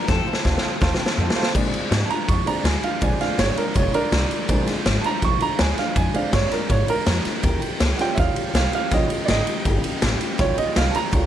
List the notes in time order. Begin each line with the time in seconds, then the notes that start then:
0.08 F2 C3 D#3 A3 C4 F4 A4 C5 F5 A5, kick, snare
0.26 D#3 A3 C4 F4 C5 F5 A5, muted upright bass stroke
0.33 snare
0.44 D2 D#3 A3 C4 F4 C5 F5 A5, kick, snare
0.58 snare
0.62 D#3 A3 C4 F4 C5 F5 A5
0.81 D#2 F2 C3 D#3 A3 C4 F4 C5 F5 A5, kick, snare
0.94 snare
0.99 D#3 A3 C4 F4 C5 F5 A5
1.06 snare
1.17 F2 D#3 A3 C4 F4 C5 F5 A5
1.30 snare
1.35 D#3 A3 C4 F4 C5 F5 A5, muted upright bass stroke
1.43 snare
1.54 A#2 F3 G#3 C4 D4 F4, kick, crash
1.73 G#3 D4 F4, muted upright bass stroke, ride
1.91 G#2 F3 G#3 D4 F4, snare, ride
2.06 F4 A5, muted upright bass stroke
2.10 G#3 D4 A#5, ride
2.28 F2 A#2 F3 G#3 D4 F4 C#6, kick, ride
2.46 G#3 C4 D4 F4 A#5, ride
2.64 D2 F3 G#3 D4 F4 G#5, snare, ride
2.83 G#3 D4 F4 F5, ride
3.01 A#1 A#2 F3 G#3 C4 D4 F4 G#5, kick, ride
3.19 G#3 D4 F4 F5, muted upright bass stroke, snare, ride
3.38 G1 F3 G#3 D4 F4 C#5, snare, ride
3.55 G#3 D4 F4 A#4, muted upright bass stroke, ride
3.74 F1 A#2 F3 G#3 D4 F4 C#5, kick, ride
3.93 G#3 D4 F4 A#4, ride
4.11 C2 F3 G#3 D4 F4, snare, ride
4.30 G#3 D4 F4, muted upright bass stroke, ride
4.48 A#1 A#2 F3 G#3 C4 D4 F4, kick, ride
4.66 G#3 D4 F4, muted upright bass stroke, snare, ride
4.85 G#1 F3 G#3 D4 F4, snare, ride
5.01 D4 F4 A5, ride
5.06 G#3 A#5
5.22 A#1 A#2 F3 G#3 D4 F4 C#6, kick, ride
5.40 G#3 D4 F4 A#5, ride
5.59 D2 F3 G#3 D4 F4 G#5, snare, ride
5.77 G#3 D4 F4 F5, snare, ride
5.96 F2 A#2 F3 G#3 D4 F4 G#5, kick, ride
6.14 G#3 C4 D4 F4 F5, muted upright bass stroke, ride
6.32 G2 F3 G#3 D4 F4 C#5, kick, snare, ride
6.51 G#3 D4 F4 A#4, muted upright bass stroke, snare, ride
6.69 G#2 A#2 F3 G#3 D4 F4 C#5, kick, ride
6.87 G#3 D4 F4 A#4, muted upright bass stroke, ride
7.06 F2 F3 G#3 D4 F4, snare, ride
7.24 G#3 D4 F4, muted upright bass stroke, snare, ride
7.43 D#2 D#3 A#3 C#4 G4, kick, ride
7.61 A#3 C#4 G4, muted upright bass stroke, ride
7.80 C#2 D#3 A#3 C#4 G4, snare, ride
7.97 G3 A#3 C#4 G4 F#5, snare, ride
8.01 F4 G5
8.15 D#2 D#3 A#3 C#4 G4 E5, kick, ride
8.19 F5
8.35 A#3 C#4 G4, muted upright bass stroke, ride
8.53 C2 D#3 A#3 C#4 G4 F5, snare, ride
8.72 A#3 C#4 G4 F5, ride
8.91 A#1 D#3 G3 A#3 C#4 F4 G4 D#5, kick, snare, ride
9.10 A#3 C#4 G4, muted upright bass stroke, ride
9.25 G#1 D#3 A#3 C#4 D5, snare, ride
9.30 G4 D#5
9.47 A#3 C#4 G4, ride
9.65 G1 D#3 A#3 C#4 G4, kick, ride
9.83 A#3 C#4 G4, muted upright bass stroke, ride
10.01 A1 D#3 A#3 C#4 G4, snare, ride
10.20 A#3 C#4 G4, muted upright bass stroke, ride
10.38 A#1 D#3 G3 A#3 C#4 F4 G4 C#5, kick, snare, ride
10.57 A#3 C#4 G4 D#5, muted upright bass stroke, ride
10.75 C2 D#3 A#3 C#4 G4 F5, snare, ride
10.91 C#4 G4 A5, muted upright bass stroke, ride
10.95 A#3 A#5
11.12 C#2 D#3 G3 A#3 C#4 F4 G4, kick, ride